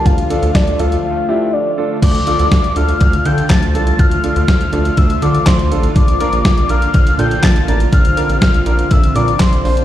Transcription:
Already playing: analog synth pad F4
0.06 analog synth bass D2, analog synth pad D3 F3 A3, soft synth lead F5, kick, closed hi-hat
0.18 closed hi-hat
0.30 grand piano D4 F4 A4, closed hi-hat
0.43 analog synth bass D2, closed hi-hat
0.55 analog synth bass D2, soft synth lead D5, kick, snare, closed hi-hat
0.67 closed hi-hat
0.79 analog synth bass D2, grand piano D4 F4 A4, soft synth lead F5, closed hi-hat
0.92 closed hi-hat
1.04 soft synth lead F5
1.29 grand piano D4 F4 G4, soft synth lead E5
1.53 soft synth lead D5
1.78 grand piano D4 F4 A4
2.02 analog synth bass D2, analog synth pad D3 F3 A3 F4, soft synth lead D6, kick, closed hi-hat, crash
2.15 closed hi-hat
2.27 grand piano D4 F4 A4, closed hi-hat
2.39 analog synth bass D2, closed hi-hat
2.52 analog synth bass D2, kick, snare, closed hi-hat
2.64 closed hi-hat
2.76 analog synth bass D2, grand piano D4 F4 A4, soft synth lead F6, closed hi-hat
2.89 closed hi-hat
3.01 analog synth bass D2, kick, closed hi-hat
3.13 closed hi-hat
3.25 analog synth bass D3, grand piano D4 F4 A4, soft synth lead G6, closed hi-hat
3.38 closed hi-hat
3.50 analog synth bass D2, soft synth lead A6, kick, snare, clap, closed hi-hat
3.63 closed hi-hat
3.75 analog synth bass C2, grand piano D4 F4 A4, soft synth lead A6, closed hi-hat
3.87 closed hi-hat
3.99 analog synth bass D2, soft synth lead F6, kick, closed hi-hat
4.11 closed hi-hat
4.24 grand piano D4 F4 A4, closed hi-hat
4.36 analog synth bass D2, closed hi-hat
4.48 analog synth bass D2, soft synth lead F6, kick, snare, closed hi-hat
4.61 closed hi-hat
4.73 analog synth bass D2, grand piano D4 F4 A4, soft synth lead F6, closed hi-hat
4.85 closed hi-hat
4.97 analog synth bass D2, soft synth lead E6, kick, closed hi-hat
5.10 closed hi-hat
5.22 analog synth bass D3, grand piano D4 F4 A4, soft synth lead D6, closed hi-hat
5.34 closed hi-hat
5.46 analog synth bass D2, soft synth lead C6, kick, snare, clap, closed hi-hat
5.59 closed hi-hat
5.71 analog synth bass A1, grand piano D4 F4 A4, closed hi-hat
5.83 closed hi-hat
5.96 analog synth bass A#1, analog synth pad F3 A#3, soft synth lead D6, kick, closed hi-hat
6.08 closed hi-hat
6.20 grand piano D4 F4 A#4, closed hi-hat
6.33 analog synth bass A#1, closed hi-hat
6.45 analog synth bass A#1, kick, snare, closed hi-hat
6.58 closed hi-hat
6.69 analog synth bass A#1, grand piano D4 F4 A#4, soft synth lead F6, closed hi-hat
6.82 closed hi-hat
6.94 analog synth bass A#1, kick, closed hi-hat
7.07 closed hi-hat
7.19 analog synth bass A#2, grand piano D4 F4 A4, soft synth lead G6, closed hi-hat
7.31 closed hi-hat
7.43 analog synth bass A#1, soft synth lead A6, kick, snare, clap, closed hi-hat
7.56 closed hi-hat
7.68 analog synth bass A1, grand piano D4 F4 A#4, soft synth lead A6, closed hi-hat
7.80 closed hi-hat
7.93 analog synth bass A#1, analog synth pad C4, soft synth lead F6, kick, closed hi-hat
8.05 closed hi-hat
8.17 grand piano D4 F4 A#4, closed hi-hat
8.29 analog synth bass A#1, closed hi-hat
8.42 analog synth bass A#1, soft synth lead F6, kick, snare, closed hi-hat
8.54 closed hi-hat
8.66 analog synth bass A#1, grand piano D4 F4 A#4, soft synth lead F6, closed hi-hat
8.79 closed hi-hat
8.91 analog synth bass A#1, soft synth lead E6, kick, closed hi-hat
9.04 closed hi-hat
9.15 analog synth bass A#2, grand piano D4 F4 A#4, soft synth lead D6, closed hi-hat
9.28 closed hi-hat
9.40 analog synth bass A#1, soft synth lead C6, kick, snare, clap, closed hi-hat
9.53 closed hi-hat
9.65 analog synth bass A#1, grand piano D4 F4 C5, open hi-hat
9.77 closed hi-hat

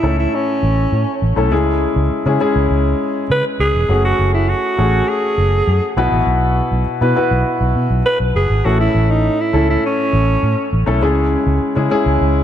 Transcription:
Already playing: grand piano A2 A3 C#4 E4 A4, alto saxophone E4
0.03 fingered electric bass C#2, grand piano A3 C#4 E4 A4
0.20 alto saxophone E4
0.35 alto saxophone C#4
0.63 fingered electric bass A1
0.92 fingered electric bass A2
1.22 fingered electric bass A1
1.36 fingered electric bass B1, grand piano A3 C#4 E4 A4
1.51 fingered electric bass C#2, grand piano C#3 G#3 C#4 E4 G#4
1.96 fingered electric bass C#2
2.11 muted fingered electric bass stroke
2.25 fingered electric bass C#3, grand piano G#3 C#4 E4 G#4
2.40 grand piano G#3 C#4 E4 G#4
2.56 fingered electric bass C#2
2.70 fingered electric bass C#2
3.30 fingered electric bass C#3, alto saxophone B4
3.60 fingered electric bass C#2, alto saxophone G#4
3.74 fingered electric bass E1
3.89 fingered electric bass F#1, grand piano A3 C#4 F#4 G#4
4.05 alto saxophone F#4
4.19 fingered electric bass F#1
4.34 alto saxophone E4
4.49 alto saxophone F#4
4.78 fingered electric bass A1, grand piano A3 C#4 F#4 G#4
5.09 alto saxophone G#4
5.38 fingered electric bass F#1
5.67 fingered electric bass F#2
5.97 fingered electric bass B1, grand piano B2 B3 E4 F#4 B4
6.12 fingered electric bass A1
6.27 fingered electric bass B1
6.72 fingered electric bass B1
7.01 fingered electric bass B2, grand piano B3 E4 F#4 B4
7.16 grand piano B3 E4 F#4 B4
7.31 fingered electric bass B1
7.61 fingered electric bass B1
7.76 fingered electric bass B2
7.90 fingered electric bass B1
8.06 alto saxophone B4
8.20 fingered electric bass B1
8.35 fingered electric bass F#1, alto saxophone G#4
8.50 fingered electric bass G#1
8.64 fingered electric bass A1, grand piano A2 A3 C#4 E4 A4, alto saxophone F#4
8.80 alto saxophone E4
8.95 fingered electric bass A1
9.10 alto saxophone D#4
9.41 alto saxophone E4
9.53 fingered electric bass C#2, grand piano A3 C#4 E4 A4
9.70 alto saxophone E4
9.85 alto saxophone C#4
10.13 fingered electric bass A1
10.43 fingered electric bass A2
10.73 fingered electric bass A1
10.86 fingered electric bass B1, grand piano A3 C#4 E4 A4
11.01 fingered electric bass C#2, grand piano C#3 G#3 C#4 E4 G#4
11.47 fingered electric bass C#2
11.75 fingered electric bass C#3, grand piano G#3 C#4 E4 G#4
11.90 grand piano G#3 C#4 E4 G#4
12.06 fingered electric bass C#2
12.21 fingered electric bass C#2

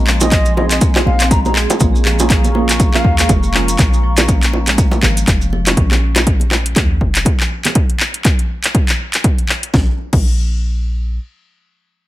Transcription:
Already playing: 808-style bass A#1, analog synth pad D#5 G#5 C6
0.07 marimba F3, clap
0.20 synth stab C4 D#4 F#4 G#4, bansuri D#5, closed hi-hat, high bongo, low bongo, maracas
0.32 kick, clap, closed hi-hat, maracas
0.45 closed hi-hat, maracas
0.56 marimba F3, synth stab C4 D#4 F#4 G#4, bansuri D#5, high bongo, low bongo
0.71 marimba C4, bansuri D#5, clap, closed hi-hat, maracas
0.81 marimba A#3, kick, closed hi-hat, maracas
0.95 synth stab C4 D#4 F#4 G#4, clap, high bongo, maracas
1.06 808-style bass A#1, bansuri F5, low bongo
1.20 marimba C4, clap, closed hi-hat, maracas
1.31 marimba G#3, bansuri A#5, kick, closed hi-hat, maracas
1.45 synth stab C4 D#4 F#4 G#4, bansuri A#5, low bongo, maracas
1.56 marimba G#4, clap
1.70 closed hi-hat, high bongo, maracas
1.80 808-style bass A#1, synth stab A#3 C#4 F4 G#4, marimba A#3, analog synth pad G#4 F5 A#5 C#6, kick, closed hi-hat, maracas
1.96 maracas
2.05 marimba F3, clap, low bongo
2.19 synth stab A#3 C#4 F4 G#4, closed hi-hat, high bongo, maracas
2.30 kick, clap, closed hi-hat, maracas
2.44 closed hi-hat, low bongo, maracas
2.55 marimba F3, synth stab A#3 C#4 F4 G#4, high bongo
2.69 marimba C#4, clap, closed hi-hat, maracas
2.80 marimba A#3, kick, closed hi-hat, maracas
2.94 synth stab A#3 C#4 F4 G#4, bansuri F5, clap, low bongo, maracas
3.04 808-style bass D#2, kick
3.19 marimba G#3, synth stab A#3 C#4 F4 G#4, bansuri F5, clap, closed hi-hat, maracas
3.29 808-style bass F1, marimba A#3, kick, closed hi-hat, low bongo, maracas
3.43 maracas
3.54 marimba F3, synth stab A#3 C#4 F4 G#4, clap
3.68 closed hi-hat, maracas
3.78 808-style bass A#1, kick, clap, closed hi-hat, low bongo, maracas
3.93 maracas
4.04 marimba F3
4.17 marimba C#4, clap, closed hi-hat, high bongo, low bongo, maracas
4.28 marimba A#3, kick, closed hi-hat, maracas
4.42 clap, closed hi-hat, maracas
4.53 high bongo
4.67 marimba G#3, clap, closed hi-hat, low bongo, maracas
4.78 marimba A#3, kick, closed hi-hat, maracas
4.91 high bongo, maracas
5.03 808-style bass G#1, marimba F3, clap, low bongo
5.17 closed hi-hat, maracas
5.28 808-style bass F1, kick, clap, closed hi-hat, maracas
5.41 maracas
5.53 marimba F3, low bongo
5.67 marimba C#4, clap, closed hi-hat, high bongo, maracas
5.77 808-style bass A#1, kick, closed hi-hat
5.91 clap, low bongo
6.16 clap, closed hi-hat, high bongo
6.27 kick, closed hi-hat
6.40 closed hi-hat, low bongo
6.51 clap, high bongo
6.66 closed hi-hat
6.76 808-style bass D#2, kick, clap, closed hi-hat, low bongo
7.01 808-style bass F1, kick
7.15 clap, closed hi-hat
7.25 kick, closed hi-hat, low bongo
7.40 clap
7.65 clap, closed hi-hat, low bongo
7.75 kick, closed hi-hat
7.90 closed hi-hat
8.00 clap
8.14 closed hi-hat
8.25 kick, clap, closed hi-hat
8.39 closed hi-hat
8.64 clap, closed hi-hat
8.75 kick, closed hi-hat
8.89 clap, closed hi-hat
9.14 clap, closed hi-hat
9.24 kick, closed hi-hat
9.38 closed hi-hat
9.49 clap
9.63 closed hi-hat
9.74 808-style bass A#1, kick, snare
10.13 808-style bass A#1, kick, crash

